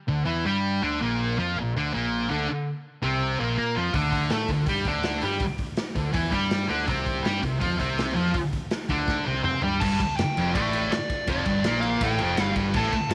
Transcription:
0.08 fingered electric bass D2, distorted electric guitar D3
0.25 fingered electric bass E2, distorted electric guitar E3 E4
0.45 fingered electric bass G2, distorted electric guitar G3 G4
0.82 fingered electric bass D2, distorted electric guitar D3 D4
1.01 fingered electric bass A#1, distorted electric guitar A#2 A#3
1.38 fingered electric bass F2, distorted electric guitar F3 F4
1.55 fingered electric bass A#1, distorted electric guitar A#2
1.74 fingered electric bass D2, distorted electric guitar D3 D4
1.93 fingered electric bass A#1, distorted electric guitar A#2 A#3
2.30 fingered electric bass D2, distorted electric guitar D3 D4
3.02 fingered electric bass C2, distorted electric guitar C3 C4
3.40 fingered electric bass A#1, distorted electric guitar A#2 A#3
3.57 fingered electric bass A#2, distorted electric guitar A#3 A#4
3.75 fingered electric bass F2, distorted electric guitar F3 F4
3.94 fingered electric bass D2, distorted electric guitar D3 D4, kick, open hi-hat
4.12 kick, open hi-hat
4.30 fingered electric bass A2, distorted electric guitar A3 A4, snare, open hi-hat
4.48 fingered electric bass D2, distorted electric guitar D3, kick, open hi-hat
4.66 fingered electric bass G2, distorted electric guitar G3 G4, kick, open hi-hat
4.85 fingered electric bass D2, distorted electric guitar D3 D4, kick, open hi-hat
5.03 snare, open hi-hat
5.22 fingered electric bass G2, distorted electric guitar G3 G4, open hi-hat
5.31 snare
5.40 kick, open hi-hat
5.58 kick, open hi-hat
5.77 snare, open hi-hat
5.95 fingered electric bass D2, distorted electric guitar D3, kick, open hi-hat
6.12 fingered electric bass E2, distorted electric guitar E3 E4, kick, open hi-hat
6.30 fingered electric bass G2, distorted electric guitar G3 G4, kick, open hi-hat
6.51 snare, open hi-hat
6.68 fingered electric bass D2, distorted electric guitar D3 D4, open hi-hat
6.80 snare
6.87 fingered electric bass C2, distorted electric guitar C3 C4, kick, open hi-hat
7.06 kick, open hi-hat
7.23 fingered electric bass G2, distorted electric guitar G3 G4, snare, open hi-hat
7.41 fingered electric bass C2, distorted electric guitar C3, kick, open hi-hat
7.59 fingered electric bass F2, distorted electric guitar F3 F4, kick, open hi-hat
7.78 fingered electric bass C2, distorted electric guitar C3 C4, kick, open hi-hat
7.98 snare, open hi-hat
8.14 fingered electric bass F2, distorted electric guitar F3 F4, open hi-hat
8.27 snare
8.34 kick, open hi-hat
8.53 kick, open hi-hat
8.71 snare, open hi-hat
8.89 fingered electric bass D2, distorted electric guitar D3 D4, kick, open hi-hat
9.08 kick, snare
9.26 fingered electric bass C2, distorted electric guitar C3 C4
9.43 fingered electric bass C3, distorted electric guitar C4 C5, mid tom
9.62 fingered electric bass G2, distorted electric guitar G3 G4, floor tom
9.80 fingered electric bass G1, distorted electric guitar G2 G3, lead electric guitar A5, kick, crash
10.00 muted fingered electric bass stroke, muted distorted electric guitar stroke, kick, ride
10.17 lead electric guitar G5, muted fingered electric bass stroke, muted distorted electric guitar stroke, snare, ride
10.36 fingered electric bass F1, distorted electric guitar F2 F3, ride
10.54 fingered electric bass A1, distorted electric guitar A2 A3, lead electric guitar D5, kick, ride
10.73 ride
10.92 lead electric guitar D5, snare, ride
11.10 kick, ride
11.27 fingered electric bass F1, distorted electric guitar F2 F3, lead electric guitar D5, kick, ride
11.46 fingered electric bass G1, distorted electric guitar G2 G3, kick, ride
11.64 fingered electric bass A#1, distorted electric guitar A#2 A#3, snare, ride
11.81 lead electric guitar F5, ride
12.01 fingered electric bass A1, distorted electric guitar A2 A3, lead electric guitar G5, kick, ride
12.19 fingered electric bass F1, distorted electric guitar F2 F3, ride
12.37 fingered electric bass G1, distorted electric guitar G2 G3, snare, ride
12.56 kick, ride
12.74 fingered electric bass A1, distorted electric guitar A2 A3, lead electric guitar A5, kick, crash
12.93 muted distorted electric guitar stroke, kick, ride
13.09 muted distorted electric guitar stroke, snare, ride

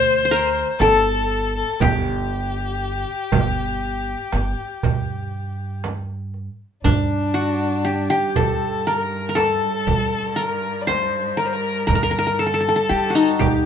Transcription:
Already playing: upright bass D2, qanun C5, violin C5
0.25 qanun C5
0.31 qanun A#4
0.79 upright bass G1, violin A4, qanun A4, darbuka tek, frame drum
1.56 violin A4
1.80 upright bass G1, violin G4, qanun G4, darbuka dum, frame drum
2.31 darbuka ka
2.82 darbuka ka
3.32 upright bass G1, darbuka dum, frame drum
4.32 upright bass G1, darbuka tek, frame drum
4.83 upright bass G2, darbuka dum, frame drum
5.84 darbuka tek, frame drum
6.34 darbuka ka
6.84 upright bass G2, cello G2, qanun D4, violin D4, darbuka dum, frame drum
7.34 qanun F#4, darbuka ka
7.85 qanun G4
8.10 qanun G4, violin G4
8.36 upright bass G2, violin A4, qanun A4, darbuka dum, frame drum
8.87 qanun A#4, violin A#4
9.29 qanun A#4
9.35 qanun A4, violin A4, darbuka tek, frame drum
9.87 upright bass G3, frame drum, darbuka dum
10.36 qanun A#4, violin A#4
10.81 violin D5
10.87 qanun C5, violin C5, darbuka tek, frame drum
11.37 qanun A#4, violin A#4
11.46 violin C5
11.53 violin A#4
11.87 upright bass G2, qanun A#4, violin A#4, darbuka dum, frame drum
11.95 qanun A#4
12.03 qanun A#4
12.11 qanun A#4
12.19 qanun A#4
12.27 qanun A#4
12.39 qanun A4, violin A4
12.46 qanun A4
12.54 qanun A4
12.61 qanun A4
12.69 qanun A4
12.76 qanun A4
12.89 upright bass G3, qanun G4
13.10 qanun F#4
13.15 qanun D#4
13.39 upright bass G2, qanun G4, violin G4, darbuka dum, frame drum

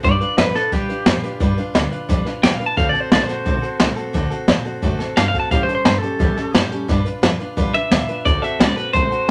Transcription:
0.03 upright bass G2, steel-string acoustic guitar G3 D4 F4 B4, clean electric guitar D5, kick, closed hi-hat
0.20 steel-string acoustic guitar D4 F4 B4, closed hi-hat
0.37 upright bass F2, steel-string acoustic guitar G3 D4 F4 B4, clean electric guitar B4, snare, closed hi-hat
0.54 steel-string acoustic guitar D4 F4 B4, clean electric guitar A4, muted upright bass stroke, snare, closed hi-hat
0.72 upright bass E2, steel-string acoustic guitar G3 D4 F4 B4, clean electric guitar G4, kick, snare, closed hi-hat
0.89 steel-string acoustic guitar D4 F4 B4, closed hi-hat
1.06 upright bass F2, steel-string acoustic guitar G3 D4 F4 B4, snare, closed hi-hat
1.23 steel-string acoustic guitar D4 F4 B4, muted upright bass stroke, closed hi-hat
1.40 upright bass G2, steel-string acoustic guitar G3 D4 F4 B4, kick, closed hi-hat
1.57 steel-string acoustic guitar D4 F4 B4, muted upright bass stroke, closed hi-hat
1.74 upright bass D2, steel-string acoustic guitar G3 D4 F4 B4, snare, closed hi-hat
1.91 steel-string acoustic guitar D4 F4 B4, closed hi-hat
2.09 upright bass F2, steel-string acoustic guitar G3 D4 F4 B4, kick, snare, closed hi-hat
2.25 steel-string acoustic guitar D4 F4 B4, snare, closed hi-hat
2.42 upright bass E2, steel-string acoustic guitar G3 D4 F4 B4, clean electric guitar G5, snare, closed hi-hat
2.54 clean electric guitar F5
2.60 steel-string acoustic guitar D4 F4 B4, muted upright bass stroke, closed hi-hat
2.66 clean electric guitar A5
2.76 upright bass D2, steel-string acoustic guitar D3 A3 C4 F#4 A4, clean electric guitar F5, kick, closed hi-hat
2.89 clean electric guitar D5
2.94 steel-string acoustic guitar C4 F#4 A4, muted upright bass stroke, closed hi-hat
3.00 clean electric guitar C5
3.11 upright bass C2, steel-string acoustic guitar A3 C4 F#4, clean electric guitar D5, snare, closed hi-hat
3.23 clean electric guitar C5
3.28 steel-string acoustic guitar C4 F#4 A4, snare, closed hi-hat
3.45 upright bass B1, steel-string acoustic guitar D3 A3 C4 F#4 A4, kick, closed hi-hat
3.62 steel-string acoustic guitar C4 F#4 A4, muted upright bass stroke, closed hi-hat
3.79 upright bass C2, steel-string acoustic guitar A3 C4 F#4 A4, snare, closed hi-hat
3.96 steel-string acoustic guitar C4 F#4 A4, muted upright bass stroke, closed hi-hat
4.13 upright bass D2, steel-string acoustic guitar D3 A3 C4 F#4 A4, kick, closed hi-hat
4.30 steel-string acoustic guitar C4 F#4 A4, muted upright bass stroke, closed hi-hat
4.47 upright bass E2, steel-string acoustic guitar A3 F#4 A4, snare, closed hi-hat
4.65 steel-string acoustic guitar C4 F#4 A4, closed hi-hat
4.82 upright bass F#2, steel-string acoustic guitar D3 A3 C4 F#4 A4, kick, closed hi-hat
4.99 steel-string acoustic guitar C4 F#4 A4, snare, closed hi-hat
5.16 upright bass G2, steel-string acoustic guitar A3 C4 F#4 A4, clean electric guitar F5, snare, closed hi-hat
5.28 clean electric guitar F5
5.34 steel-string acoustic guitar C4 F#4 A4, muted upright bass stroke, kick, closed hi-hat
5.40 clean electric guitar A5
5.51 steel-string acoustic guitar A2 E3 G3 C#4 G4 A4, upright bass A2, clean electric guitar F5, kick, closed hi-hat
5.63 clean electric guitar C5
5.68 steel-string acoustic guitar G3 C#4 G4 A4, muted upright bass stroke, closed hi-hat
5.75 clean electric guitar C5
5.85 upright bass G2, steel-string acoustic guitar G3 C#4 G4 A4, clean electric guitar C5, snare, closed hi-hat
5.98 clean electric guitar A4
6.02 steel-string acoustic guitar G3 C#4 G4 A4, closed hi-hat
6.19 upright bass E2, steel-string acoustic guitar A2 E3 G3 C#4 G4 A4, kick, snare, closed hi-hat
6.36 steel-string acoustic guitar G3 C#4 G4 A4, snare, closed hi-hat
6.53 upright bass F#2, steel-string acoustic guitar G3 C#4 G4 A4, snare, closed hi-hat
6.71 steel-string acoustic guitar G3 C#4 G4 A4, muted upright bass stroke, closed hi-hat
6.88 upright bass G2, steel-string acoustic guitar G3 D4 F4 B4, kick, snare, closed hi-hat
7.05 steel-string acoustic guitar D4 F4 B4, muted upright bass stroke, closed hi-hat
7.22 upright bass F2, steel-string acoustic guitar G3 D4 F4 B4, snare, closed hi-hat
7.40 steel-string acoustic guitar D4 F4 B4, muted upright bass stroke, closed hi-hat
7.57 upright bass E2, steel-string acoustic guitar G3 D4 F4 B4, kick, closed hi-hat
7.73 steel-string acoustic guitar D4 F4 B4, clean electric guitar E5, muted upright bass stroke, closed hi-hat
7.91 upright bass D#2, steel-string acoustic guitar G3 D4 F4 B4, snare, closed hi-hat
8.08 steel-string acoustic guitar D4 F4 B4, muted upright bass stroke, closed hi-hat
8.25 upright bass D2, steel-string acoustic guitar D3 A3 C4 F#4 A4, clean electric guitar D5, kick, closed hi-hat
8.42 steel-string acoustic guitar C4 F#4 A4, clean electric guitar E5, muted upright bass stroke, closed hi-hat
8.59 upright bass C#2, steel-string acoustic guitar A3 F#4, clean electric guitar D5, snare, closed hi-hat
8.76 steel-string acoustic guitar C4 F#4 A4, clean electric guitar B4, closed hi-hat
8.93 upright bass C2, steel-string acoustic guitar D3 A3 C4 F#4 A4, clean electric guitar C5, kick, closed hi-hat
9.11 steel-string acoustic guitar C4 F#4 A4, muted upright bass stroke, closed hi-hat

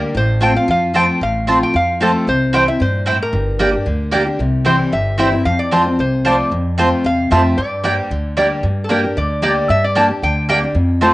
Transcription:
Already playing: steel-string acoustic guitar D3 G3 A#3 D4 G4, resonator guitar played with a steel bar A#4
0.14 upright bass A1, steel-string acoustic guitar A2, resonator guitar played with a steel bar C5
0.40 steel-string acoustic guitar F3 A3 C4 F4, mandolin C4 F4 C5 A5, resonator guitar played with a steel bar G5
0.54 steel-string acoustic guitar C4 F4, resonator guitar played with a steel bar F5
0.68 upright bass F2, steel-string acoustic guitar F3, resonator guitar played with a steel bar F5
0.94 steel-string acoustic guitar F3 A3 C4 F4, mandolin C4 F4 C5 A5, resonator guitar played with a steel bar G5
1.21 upright bass A1, steel-string acoustic guitar A2, resonator guitar played with a steel bar F5
1.47 steel-string acoustic guitar F3 A3 C4 F4, mandolin C4 F4 C5 A5
1.63 resonator guitar played with a steel bar G5
1.74 upright bass F2, steel-string acoustic guitar F3, resonator guitar played with a steel bar F5
2.00 steel-string acoustic guitar F3 A3 C4 F4, mandolin C4 F4 C5 A5, resonator guitar played with a steel bar A4
2.27 upright bass C2, steel-string acoustic guitar C3, resonator guitar played with a steel bar C5
2.53 steel-string acoustic guitar E3 G3 C4 E4, mandolin C4 E4 C5 G5, resonator guitar played with a steel bar G5
2.68 steel-string acoustic guitar C4 E4, resonator guitar played with a steel bar E5
2.80 upright bass G2, steel-string acoustic guitar A#2, resonator guitar played with a steel bar C5
3.06 steel-string acoustic guitar A2, mandolin C4 E4 C5 G5
3.23 resonator guitar played with a steel bar A#4
3.33 upright bass G1, steel-string acoustic guitar G2
3.59 steel-string acoustic guitar G3 A#3 D4 G4, mandolin A#3 G4 D5 G5
3.73 steel-string acoustic guitar D4 G4
3.86 upright bass D2, steel-string acoustic guitar D3
4.12 steel-string acoustic guitar G3 A#3 D4 G4, mandolin A#3 G4 D5 G5
4.26 steel-string acoustic guitar D4 G4
4.39 upright bass C2, steel-string acoustic guitar C3
4.65 steel-string acoustic guitar E3 G3 C4 E4, mandolin C4 E4 C5 G5, resonator guitar played with a steel bar C5
4.92 upright bass G1, steel-string acoustic guitar G2, resonator guitar played with a steel bar E5
5.18 steel-string acoustic guitar E3 G3 C4 E4, mandolin C4 E4 C5 G5, resonator guitar played with a steel bar E5
5.32 steel-string acoustic guitar C4 E4
5.45 upright bass F2, steel-string acoustic guitar F2, resonator guitar played with a steel bar F5
5.59 resonator guitar played with a steel bar D5
5.71 steel-string acoustic guitar F3 A3 C4 F4, mandolin C4 F4 C5 A5, resonator guitar played with a steel bar C5
5.86 steel-string acoustic guitar C4 F4
5.99 upright bass C2, steel-string acoustic guitar C3, resonator guitar played with a steel bar C5
6.25 steel-string acoustic guitar F3 A3 C4 F4, mandolin C4 F4 C5 A5, resonator guitar played with a steel bar D5
6.51 upright bass F2, steel-string acoustic guitar F2
6.78 steel-string acoustic guitar F3 A3 C4 F4, mandolin C4 F4 C5 A5, resonator guitar played with a steel bar C5
7.04 upright bass E2, steel-string acoustic guitar C3, resonator guitar played with a steel bar F5
7.31 upright bass F2, steel-string acoustic guitar F3 A3 C4 F4, mandolin C4 F4 C5 A5, resonator guitar played with a steel bar E5
7.58 steel-string acoustic guitar G2, upright bass G2, resonator guitar played with a steel bar D5
7.84 steel-string acoustic guitar G3 A#3 D4 G4, mandolin A#3 G4 D5 G5
8.11 upright bass D2, steel-string acoustic guitar D3
8.37 steel-string acoustic guitar G3 A#3 D4 G4, mandolin A#3 G4 D5 G5
8.63 steel-string acoustic guitar G2, upright bass G2
8.84 resonator guitar played with a steel bar A4
8.89 steel-string acoustic guitar G3 A#3 D4 G4, mandolin A#3 G4 D5 G5, resonator guitar played with a steel bar A#4
9.04 steel-string acoustic guitar D4 G4
9.16 upright bass D2, steel-string acoustic guitar D3, resonator guitar played with a steel bar D5
9.42 steel-string acoustic guitar G3 A#3 D4 G4, mandolin A#3 G4 D5 G5, resonator guitar played with a steel bar D5
9.69 steel-string acoustic guitar G2, upright bass G2, resonator guitar played with a steel bar E5
9.84 resonator guitar played with a steel bar D5
9.95 steel-string acoustic guitar G3 A#3 D4 G4, mandolin A#3 G4 D5 G5, resonator guitar played with a steel bar A5
10.09 steel-string acoustic guitar D4 G4
10.22 upright bass D2, steel-string acoustic guitar D3, resonator guitar played with a steel bar G5
10.49 steel-string acoustic guitar G3 A#3 D4 G4, mandolin A#3 G4 D5 G5, resonator guitar played with a steel bar G5
10.62 steel-string acoustic guitar D4 G4
10.75 steel-string acoustic guitar F2, upright bass F2
11.01 steel-string acoustic guitar F3 A3 C4 F4, mandolin C4 F4 C5 A5, resonator guitar played with a steel bar C5

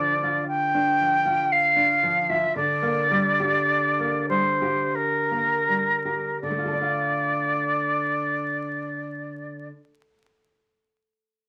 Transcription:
Already playing: nylon-string guitar D3 F3 D4, flute D5
0.23 nylon-string guitar F4
0.48 flute G5
0.74 nylon-string guitar D4
1.00 nylon-string guitar F3
1.25 nylon-string guitar F4
1.52 flute F5
1.76 nylon-string guitar D4
2.03 nylon-string guitar F3
2.30 nylon-string guitar F4, flute E5
2.56 nylon-string guitar D3, flute D5
2.82 nylon-string guitar A#3
3.11 nylon-string guitar G3
3.40 nylon-string guitar G4
3.99 nylon-string guitar A#3
4.29 nylon-string guitar G3, flute C5
4.62 nylon-string guitar G4
4.95 flute A#4
5.31 nylon-string guitar A#3
5.69 nylon-string guitar G3
6.05 nylon-string guitar G4
6.42 nylon-string guitar D3, flute D5
6.50 nylon-string guitar A3
6.58 nylon-string guitar F4
6.66 nylon-string guitar A4
6.73 nylon-string guitar D5
6.82 nylon-string guitar F5

